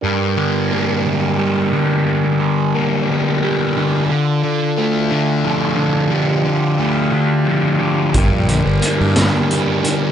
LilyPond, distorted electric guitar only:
\new Staff \with { instrumentName = "Distorted electric guitar" } { \clef bass \time 6/8 \key g \minor \tempo 4. = 59 g,8 d8 bes8 d8 g8 d8 | g,8 d8 bes8 d8 g8 d8 | d8 d8 a8 d8 f8 d8 | d8 d8 a8 d8 f8 d8 |
g,8 d8 bes8 d8 g8 d8 | }